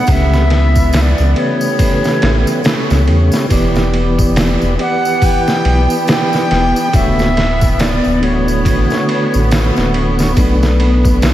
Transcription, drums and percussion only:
0.07 kick loud
0.07 ride medium
0.07 tambourine medium
0.33 snare soft
0.33 tambourine soft
0.50 snare soft
0.50 ride medium
0.75 kick medium
0.75 tambourine medium
0.93 snare loud
0.93 ride medium
0.93 tambourine medium
1.18 tambourine soft
1.36 ride medium
1.61 tambourine medium
1.79 kick loud
1.79 ride medium
1.79 tambourine medium
2.04 snare soft
2.04 tambourine soft
2.22 snare medium
2.22 ride medium
2.47 tambourine medium
2.64 snare loud
2.64 ride medium
2.64 tambourine medium
2.90 snare soft
2.90 tambourine soft
3.08 ride medium
3.32 snare medium
3.32 tambourine medium
3.50 kick loud
3.50 ride medium
3.50 tambourine medium
3.75 snare medium
3.75 tambourine soft
3.94 ride medium
4.18 kick medium
4.18 tambourine medium
4.36 snare loud
4.36 ride medium
4.36 tambourine medium
4.62 tambourine soft
4.79 ride medium
5.05 tambourine medium
5.22 kick loud
5.22 open hi-hat medium
5.22 tambourine medium
5.48 snare soft
5.48 tambourine soft
5.65 ride medium
5.90 tambourine medium
6.07 snare loud
6.07 ride medium
6.07 tambourine medium
6.33 snare soft
6.33 tambourine soft
6.51 snare soft
6.51 ride medium
6.76 tambourine medium
6.93 kick loud
6.93 ride medium
6.93 tambourine medium
7.19 snare soft
7.19 tambourine soft
7.37 snare soft
7.37 ride medium
7.61 kick medium
7.61 tambourine medium
7.79 snare loud
7.79 ride medium
7.79 tambourine medium
8.04 tambourine soft
8.23 ride medium
8.48 tambourine medium
8.65 kick loud
8.65 ride medium
8.65 tambourine medium
8.90 snare soft
8.90 tambourine soft
9.09 ride medium
9.34 tambourine medium
9.51 snare loud
9.51 ride medium
9.51 tambourine medium
9.76 snare soft
9.76 tambourine soft
9.94 ride medium
10.19 snare soft
10.19 tambourine medium
10.37 kick loud
10.37 ride medium
10.37 tambourine medium
10.63 snare medium
10.63 tambourine soft
10.80 ride medium
11.05 kick loud
11.05 tambourine medium
11.22 snare loud
11.22 ride medium
11.22 tambourine medium

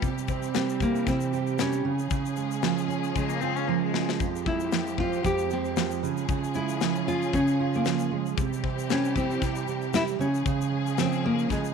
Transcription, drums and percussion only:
0.02 kick loud
0.02 shaker medium
0.18 shaker medium
0.28 kick medium
0.28 shaker medium
0.43 shaker medium
0.54 snare loud
0.54 shaker medium
0.69 shaker medium
0.80 kick medium
0.80 shaker medium
0.95 shaker medium
1.07 kick loud
1.07 snare soft
1.07 shaker medium
1.21 shaker medium
1.33 shaker medium
1.47 shaker soft
1.59 snare loud
1.59 shaker medium
1.73 shaker medium
1.99 shaker medium
2.11 kick loud
2.11 shaker medium
2.26 shaker medium
2.37 shaker medium
2.51 shaker medium
2.63 snare loud
2.63 shaker medium
2.78 shaker medium
2.90 shaker medium
3.04 shaker medium
3.16 kick loud
3.16 shaker medium
3.29 shaker medium
3.41 shaker soft
3.56 shaker soft
3.94 snare loud
4.09 snare medium
4.20 kick loud
4.20 shaker medium
4.36 shaker medium
4.46 kick medium
4.60 shaker medium
4.72 snare loud
4.72 shaker medium
4.87 shaker medium
4.98 kick medium
5.13 shaker soft
5.25 kick loud
5.25 shaker medium
5.38 shaker medium
5.51 shaker medium
5.65 shaker soft
5.77 snare loud
5.77 shaker medium
5.91 shaker medium
6.04 shaker medium
6.17 shaker medium
6.29 kick loud
6.29 shaker medium
6.44 shaker medium
6.54 shaker medium
6.69 shaker medium
6.81 snare loud
6.81 shaker medium
6.96 shaker medium
7.08 shaker medium
7.22 shaker soft
7.33 kick medium
7.33 shaker medium
7.48 shaker medium
7.74 shaker soft
7.85 snare loud
7.85 shaker medium
7.99 shaker medium
8.26 shaker soft
8.38 kick loud
8.38 shaker medium
8.53 shaker medium
8.64 kick medium
8.79 shaker medium
8.90 snare loud
8.90 shaker medium
9.05 shaker medium
9.16 kick medium
9.16 shaker medium
9.31 shaker soft
9.42 kick loud
9.42 snare soft
9.42 shaker medium
9.56 shaker medium
9.68 shaker medium
9.82 shaker soft
9.94 snare loud
9.94 shaker medium
10.08 shaker medium
10.21 shaker medium
10.35 shaker medium
10.46 kick loud
10.46 shaker medium
10.61 shaker medium
10.87 shaker medium
10.98 snare loud
10.98 shaker medium
11.12 shaker medium
11.39 shaker soft
11.50 kick medium
11.50 snare soft
11.50 shaker medium
11.65 shaker medium

